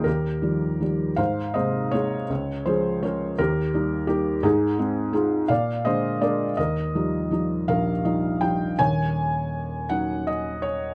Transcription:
<<
  \new Staff \with { instrumentName = "Felt piano" } { \time 6/8 \key ees \major \tempo 4. = 55 << { bes'4. f''8 ees''8 des''8~ | des''8 c''8 des''8 bes'4 g'8 | aes'4 aes'8 f''8 ees''8 d''8 | ees''4. f''4 g''8 |
\key ees \minor aes''4. ges''8 ees''8 des''8 | } \\ { g'4. c''8 c''8 aes'8~ | aes'8 aes'8 bes'8 g'4 r8 | ees'4 f'8 d''8 c''8 bes'8 | bes'4. bes'4. |
des''4. r4. | } >> }
  \new Staff \with { instrumentName = "Felt piano" } { \clef bass \time 6/8 \key ees \major ees,8 <ees f g>8 <ees f g>8 aes,8 <c aes bes>8 <aes bes ees'>8 | des,8 <f aes des'>8 <f aes des'>8 ees,8 <g bes ees'>8 <g bes ees'>8 | aes,8 <aes c' ees'>8 <aes c' ees'>8 bes,8 <d aes bes>8 <aes bes d'>8 | ees,8 <f g ees'>8 <f g ees'>8 bes,,8 <f g ees' ees''>8 <f g ees'>8 |
\key ees \minor <ees,, ees,>4. <ges des' ees'>4. | }
>>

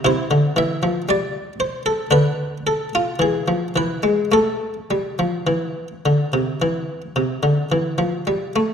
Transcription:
<<
  \new Staff \with { instrumentName = "Harpsichord" } { \time 4/4 \key a \minor \tempo 4 = 54 << { c''8 e''8 d''8 c''16 a'16 b'8 a'16 f'16 gis'8 b'8 | a'2.~ a'8 r8 | } \\ { e'2 d'4 r4 | r1 | } >> }
  \new Staff \with { instrumentName = "Harpsichord" } { \clef bass \time 4/4 \key a \minor c16 d16 e16 f16 g4 d4 e16 f16 e16 gis16 | a8 g16 f16 e8 d16 c16 e8 c16 d16 e16 f16 g16 a16 | }
>>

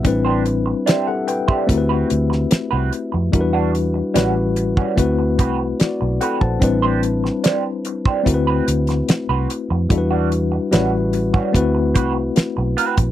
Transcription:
<<
  \new Staff \with { instrumentName = "Clean electric guitar" } { \time 4/4 \key a \dorian \tempo 4 = 73 r16 <d' g' c''>16 r8 <d' g' c''>16 r8 <d' g' c''>16 r16 <c' fis' b'>16 r8. <c' fis' b'>16 r8 | r16 <g d' fis'>16 r8 <g cis' fis'>16 r8 <g cis' fis'>16 r8 <c' fis' b'>16 r8. <c' fis' b'>16 r16 | r16 <d' g' c''>16 r8 <d' g' c''>16 r8 <d' g' c''>16 r16 <c' fis' b'>16 r8. <c' fis' b'>16 r8 | r16 <g d' fis'>16 r8 <g cis' fis'>16 r8 <g cis' fis'>16 r8 <c' fis' b'>16 r8. <c' fis' b'>16 r16 | }
  \new Staff \with { instrumentName = "Tine electric piano" } { \time 4/4 \key a \dorian << { r4 <g' e''>16 <a' fis''>16 <b' g''>16 <g' e''>8 r4. r16 | r2. <fis' d''>8 <a' fis''>16 <c'' a''>16~ | <c'' a''>16 r2. r8. | r1 | } \\ { <g c' d' e' b'>2 <a c' e' fis' bes' b'>2 | <g d' e' fis' bes' b'>4 <g cis' e' fis' b'>4 <a c' e' fis' b'>2 | <g c' d' e' b'>2 <a c' e' fis' bes' b'>2 | <g d' e' fis' a' b'>4 <g cis' e' fis' b'>4 <a c' e' fis' b'>2 | } >> }
  \new Staff \with { instrumentName = "Fingered electric bass" } { \clef bass \time 4/4 \key a \dorian a,,4 r4 d,8 d,8 r16 c,16 r16 f,16 | e,4 a,,4 d,8 c,8 r16 b,,16 r16 bes,,16 | a,,4 r4 d,8 d,8 r16 c,16 r16 f,16 | e,4 a,,4 d,8 c,8 r16 b,,16 r16 bes,,16 | }
  \new DrumStaff \with { instrumentName = "Drums" } \drummode { \time 4/4 <hh bd>8 hh8 <hh sn>8 hh16 bd16 <hh bd>8 hh16 sn16 <hh sn>8 hh8 | <hh bd>8 hh8 <hh sn>8 hh16 bd16 <hh bd>8 <hh bd>8 <hh sn>8 hh16 bd16 | <hh bd>8 hh16 sn16 <hh sn>8 hh16 bd16 <hh bd>8 hh16 <hh sn>16 <hh sn>8 hh8 | <hh bd>8 hh8 <hh sn>8 hh16 bd16 <hh bd>8 <hh bd>8 <hh sn>8 hh16 <hh bd>16 | }
>>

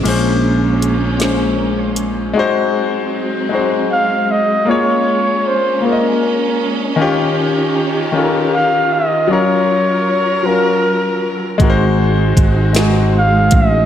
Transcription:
<<
  \new Staff \with { instrumentName = "Flugelhorn" } { \time 6/8 \key bes \minor \tempo 4. = 52 r2. | r2 f''8 ees''8 | des''4 c''8 bes'4 r8 | r2 f''8 ees''8 |
des''4. bes'4 r8 | r2 f''8 ees''8 | }
  \new Staff \with { instrumentName = "Grand piano" } { \time 6/8 \key bes \minor <bes, aes des' c''>4 r8 <bes, aes des' c''>4 r8 | <aes ees' ges' c''>4 r8 <aes ees' ges' c''>4 r8 | <bes f' aes' des''>4 r8 <bes f' aes' d'' ees''>4 r8 | <ees des' f' g'>4 r8 <ees des' f' a' bes'>4 r8 |
<ges des' f' bes'>4 r8 <ges des' f' bes'>4 r8 | <aes ees' ges' bes' c''>4 r8 <aes ees' ges' aes'>4 r8 | }
  \new Staff \with { instrumentName = "Clean electric guitar" } { \time 6/8 \key bes \minor bes8 des'8 aes'8 des'8 bes'16 c''16 aes'8 | r2. | r2. | r2. |
r2. | aes16 ees'16 c''16 ees'16 ges'16 ees'16 aes16 ees'16 c''16 ees'16 ges'16 ees'16 | }
  \new Staff \with { instrumentName = "String section" } { \time 6/8 \key bes \minor << { <aes des'>2. | <ges c'>2. | des'2. | <ees g'>2. |
<ges bes'>2. | <aes ges'>2. | } \\ { bes2. | aes2. | bes2. | f'2.~ |
f'2. | c'2. | } >> }
  \new Staff \with { instrumentName = "Fretless electric bass" } { \clef bass \time 6/8 \key bes \minor bes,,2. | r2. | r2. | r2. |
r2. | aes,,4 aes,,4. a,,8 | }
  \new DrumStaff \with { instrumentName = "Drums" } \drummode { \time 6/8 <cymc hh>4 hh8 <hh sn>4 hh8 | r4. r4. | r4. r4. | r4. r4. |
r4. r4. | <hh bd>4 <hh bd>8 <hh sn>4 <hh bd>8 | }
>>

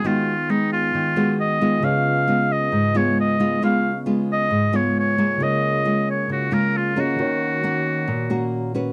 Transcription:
<<
  \new Staff \with { instrumentName = "Oboe" } { \time 4/4 \key des \mixolydian \tempo 4 = 134 f'4 ees'8 f'4. ees''4 | f''4. ees''4 des''8 ees''4 | f''4 r8 ees''4 des''8 des''4 | ees''4. des''8 ges'8 bes'8 f'8 ges'8~ |
ges'2. r4 | }
  \new Staff \with { instrumentName = "Tine electric piano" } { \time 4/4 \key des \mixolydian <ees aes' ces'' ees'' bes''>1 | <des f' aes' ces'' ees''>1~ | <des f' aes' ces'' ees''>1 | <des f' aes' bes' des''>2.~ <des f' aes' bes' des''>8 <des f' aes' bes' ees''>8 |
<ees ges' bes' des''>1 | }
  \new Staff \with { instrumentName = "Nylon-string guitar" } { \time 4/4 \key des \mixolydian << { <aes ces' ges'>8 r8 <aes ces'>4. <aes ces' ges'>4 <aes ces' f'>8~ | <aes ces' f'>4 <aes ces' f'>4 r8 <aes ces' f'>4 <aes ces' f'>8 | <aes ces' f'>8 r8 <aes ces' f'>4 r8 <aes ces' f'>4 <aes bes f'>8~ | <aes bes f'>4 <aes bes f'>4. <aes bes f'>4 <bes des' ges'>8~ |
<bes des' ges'>4 <bes des' ges'>4 r8 <bes des' ges'>4 <des' ges' ces''>8 | } \\ { ees2 ees2 | des2 aes,2 | des2 aes,2 | des2 des2 |
ees2 bes,2 | } >> }
>>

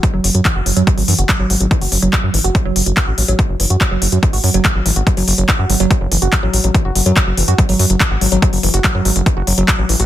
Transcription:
<<
  \new Staff \with { instrumentName = "Synth arpeggio sound" } { \clef bass \time 4/4 \key fis \minor \tempo 4 = 143 fis16 fis16 fis16 fis16 e16 fis'16 fis16 fis16 fis16 fis16 e16 fis'16 fis16 fis16 fis16 fis16 | e16 fis'16 fis16 fis16 r16 fis16 e16 fis'16 fis16 fis16 fis16 fis16 e16 fis'16 fis16 fis16 | r16 fis16 e16 fis'16 fis16 fis16 fis16 fis16 e16 fis'16 fis16 fis16 fis16 fis16 e16 fis'16 | fis16 fis16 fis16 fis16 e16 fis'16 fis16 fis16 fis16 fis16 e16 fis'16 fis16 fis16 fis16 fis16 |
e16 fis'16 fis16 fis16 r16 fis16 e16 fis'16 fis16 fis16 fis16 fis16 e16 fis'16 fis16 fis16 | fis16 fis16 e16 fis'16 fis16 fis16 fis16 fis16 e16 fis'16 fis16 fis16 r16 fis16 e16 fis'16 | }
  \new Staff \with { instrumentName = "Analog synth bass" } { \clef bass \time 4/4 \key fis \minor r16 fis,,16 fis,,16 fis,16 r16 fis,,16 fis,,16 fis,16 r16 gis,,16 fis,16 fis,,16 r16 gis,,16 gis,,16 gis,,16 | r16 fis,,16 fis,,16 fis,,16 r16 fis,16 gis,,16 fis,,16 r16 fis,,16 fis,,16 fis,,16 r16 a,,16 a,,16 a,,16 | r16 fis,,16 fis,,16 fis,16 r16 fis,,16 fis,,16 fis,16 r16 gis,,16 fis,16 fis,,16 r16 gis,,16 gis,,16 gis,,16 | r16 fis,,16 fis,,16 fis,,16 r16 fis,16 gis,,16 fis,,16 r16 fis,,16 fis,,16 fis,,16 r16 a,,16 a,,16 a,,16 |
r16 fis,,16 fis,,16 fis,16 r16 fis,,16 fis,,16 fis,16 r16 gis,,16 fis,16 fis,,16 r16 gis,,16 gis,,16 gis,,16 | r16 fis,,16 fis,,16 fis,,16 r16 fis,16 gis,,16 fis,,16 r16 fis,,16 fis,,16 fis,,16 r16 a,,16 a,,16 a,,16 | }
  \new DrumStaff \with { instrumentName = "Drums" } \drummode { \time 4/4 <hh bd>8 hho16 hh16 <hc hh bd>8 hho16 hh16 <hh bd>16 hho16 hho16 hh16 <hc hh bd>8 hho16 hh16 | <hh bd>16 hho16 hho16 hh16 <hc hh bd>8 hho16 hh16 <hh bd>8 hho16 hh16 <hc hh bd>8 hho16 hh16 | <hh bd>8 hho16 hh16 <hc hh bd>8 hho16 hh16 <hh bd>16 hho16 hho16 hh16 <hc hh bd>8 hho16 hh16 | <hh bd>16 hho16 hho16 hh16 <hc hh bd>8 hho16 hh16 <hh bd>8 hho16 hh16 <hc hh bd>8 hho16 hh16 |
<hh bd>8 hho16 hh16 <hc hh bd>8 hho16 hh16 <hh bd>16 hho16 hho16 hh16 <hc hh bd>8 hho16 hh16 | <hh bd>16 hho16 hho16 hh16 <hc hh bd>8 hho16 hh16 <hh bd>8 hho16 hh16 <hc hh bd>8 hho16 hh16 | }
>>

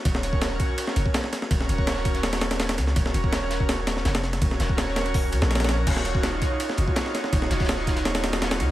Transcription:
<<
  \new Staff \with { instrumentName = "Analog synth pad" } { \time 4/4 \key ees \minor \tempo 4 = 165 <des' ges' bes' des''>2~ <des' ges' bes' des''>8 r4. | <des' ges' bes' des''>2~ <des' ges' bes' des''>8 r4. | <des' ges' bes' des''>2~ <des' ges' bes' des''>8 r4. | <des' ges' bes' des''>2~ <des' ges' bes' des''>8 <des' ges' bes' des''>4. |
<ees' f' ges' des''>2~ <ees' f' ges' des''>8 <ees' f' ges' des''>4. | <ees' f' ges' des''>2~ <ees' f' ges' des''>8 <ees' f' ges' des''>4. | }
  \new Staff \with { instrumentName = "808-style bass" } { \clef bass \time 4/4 \key ees \minor ees,,4. r4 f,,16 r4 r16 | ees,,8 ees,,2. des,8 | ees,,8 ees,,2~ ees,,8 f,,4 | ees,,8 ees,,2 des,16 bes,,4~ bes,,16 |
ees,,4. r4 f,,16 r4 r16 | ees,,8 ees,,2. des,8 | }
  \new DrumStaff \with { instrumentName = "Drums" } \drummode { \time 4/4 <hh bd cymr>16 sn16 <hh cymr>16 bd16 <hh cymr sn>8 <hh bd cymr>8 <hh cymr>16 sn16 <hh cymr>16 bd16 <hh cymr sn>16 sn16 <hh cymr sn>16 sn16 | <hh bd cymr>16 sn16 <hh cymr>16 bd16 <hh cymr sn>16 sn16 <hh bd cymr>16 <cymr sn>16 <hho cymr sn>16 <cymr sn>16 <hh cymr sn>16 <hh cymr sn>16 <hh cymr sn>16 <cymr sn>16 <hh cymr sn>16 <hh sn>16 | <hh bd cymr>16 sn16 <hh cymr>16 bd16 <hh cymr sn>8 <hh cymr sn>16 bd16 <hh cymr sn>8 <hh cymr sn>16 sn16 <hh cymr sn>16 <cymr sn>16 <hh sn>16 <cymr sn>16 | <hh bd cymr>16 sn16 <hh cymr sn>16 bd16 <hh cymr sn>16 sn16 <hh cymr sn>16 <cymr sn>16 <hh hho bd>8 <hh cymr>16 <hh sn>16 <cymr sn>32 <cymr sn>32 <hh cymr sn>32 <cymr sn>32 <hh cymr sn>8 |
<cymc hh bd cymr>16 sn16 <hh cymr>16 bd16 <hh cymr sn>8 <hh bd cymr>8 <hh cymr>16 sn16 <hh cymr>16 bd16 <hh cymr sn>16 sn16 <hh cymr sn>16 sn16 | <hh bd cymr>16 sn16 <hh cymr sn>16 <hh bd sn>32 <hh sn>32 <hh cymr sn>16 sn16 <hh bd cymr sn>16 <hh cymr sn>16 <hh cymr sn>16 <cymr sn>16 <hh cymr sn>16 <cymr sn>16 <hh cymr sn>16 <cymr sn>16 <hh cymr sn>8 | }
>>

